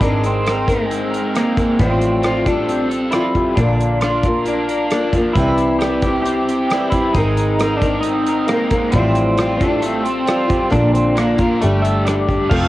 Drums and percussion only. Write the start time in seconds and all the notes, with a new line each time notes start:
0.01 kick, closed hi-hat
0.24 closed hi-hat
0.46 cross-stick, closed hi-hat
0.68 kick, closed hi-hat
0.91 closed hi-hat
1.14 closed hi-hat
1.35 cross-stick, closed hi-hat
1.57 kick, closed hi-hat
1.79 kick, closed hi-hat
2.01 closed hi-hat
2.23 cross-stick, closed hi-hat
2.46 kick, closed hi-hat
2.69 closed hi-hat
2.91 closed hi-hat
3.12 cross-stick, closed hi-hat
3.35 kick, closed hi-hat
3.57 kick, closed hi-hat
3.81 closed hi-hat
4.01 cross-stick, closed hi-hat
4.23 kick, closed hi-hat
4.46 closed hi-hat
4.69 closed hi-hat
4.91 cross-stick, closed hi-hat
5.13 kick, closed hi-hat
5.36 kick, closed hi-hat
5.58 closed hi-hat
5.81 cross-stick, closed hi-hat
6.02 kick, closed hi-hat
6.25 closed hi-hat
6.49 closed hi-hat
6.70 cross-stick, closed hi-hat
6.92 kick, closed hi-hat
7.14 kick, closed hi-hat
7.37 closed hi-hat
7.59 cross-stick, closed hi-hat
7.82 kick, closed hi-hat
8.03 closed hi-hat
8.26 closed hi-hat
8.48 cross-stick, closed hi-hat
8.70 kick, closed hi-hat
8.92 kick, closed hi-hat
9.15 closed hi-hat
9.37 cross-stick, closed hi-hat
9.61 kick, closed hi-hat
9.82 closed hi-hat
10.06 closed hi-hat
10.27 cross-stick, closed hi-hat
10.50 kick, closed hi-hat
10.72 kick, closed hi-hat
10.95 closed hi-hat
11.17 cross-stick, closed hi-hat
11.39 kick, closed hi-hat
11.62 closed hi-hat
11.85 closed hi-hat
12.07 cross-stick, closed hi-hat
12.29 kick, closed hi-hat
12.51 kick, crash